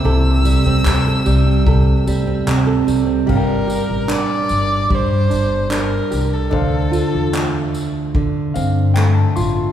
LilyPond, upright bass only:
\new Staff \with { instrumentName = "Upright bass" } { \clef bass \time 4/4 \key g \dorian \tempo 4 = 74 c,8. d,16 d,8 c,4 d,8 d,8 c,8 | g,,8. a,,8. g,,8 g,8 g,,4 c,8 | d,8. e,8. d,8 d8 g,4 a,,8 | }